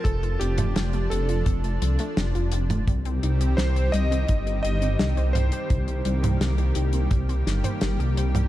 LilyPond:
<<
  \new Staff \with { instrumentName = "Electric grand piano" } { \time 4/4 \key c \dorian \tempo 4 = 85 a'8 g'4 a'4. r4 | r4 c''8 ees''4 ees''4 c''8~ | c''2.~ c''8 r8 | }
  \new Staff \with { instrumentName = "Synth arpeggio sound" } { \time 4/4 \key c \dorian c'16 f'16 c'16 a16 f16 a16 c'16 f'16 c'16 a16 f16 a16 c'16 f'16 c'16 a16 | g16 c'16 ees'16 g'16 ees'16 c'16 g16 c'16 ees'16 g'16 ees'16 c'16 g16 c'16 ees'16 g'16 | ees'16 c'16 g16 c'16 ees'16 g'16 ees'16 c'16 g16 c'16 ees'16 c''16 g'16 g'16 c''16 g16 | }
  \new Staff \with { instrumentName = "Analog synth pad" } { \time 4/4 \key c \dorian << { <f a''>1 | <ees g g'>1~ | <ees g g'>1 | } \\ { d'1 | c'1 | bes1 | } >> }
  \new Staff \with { instrumentName = "Detuned saw bass" } { \clef bass \time 4/4 \key c \dorian f,,8 f,,8 f,,8 f,,8 f,,8 c,16 r16 f,,16 f,,16 f,,8 | c,8 c,8 c,8 c,8 g,,8 g,,8 c,16 c,16 c,16 r16 | c,8 c,8 c,8 c,8 c,8 g,,16 r16 g,,16 c,16 c,8 | }
  \new DrumStaff \with { instrumentName = "Drums" } \drummode { \time 4/4 <hh bd>16 hh16 hh16 <hh toml>16 <hh sn>16 hh16 hh16 hh16 <hh bd>16 hh16 hh16 hh16 <hh sn>16 hh16 hh16 <hh toml>16 | <hh bd>16 hh16 hh16 hh16 <hh sn>16 hh16 hh16 hh16 <hh bd>16 hh16 hh16 hh16 <hh sn>16 hh16 <hh toml>16 hh16 | <hh bd>16 hh16 hh16 <hh toml>16 <hh sn>16 hh16 hh16 hh16 <hh bd>16 hh16 <hh sn>16 <hh toml>16 <hh sn>16 hh16 hh16 <hh toml>16 | }
>>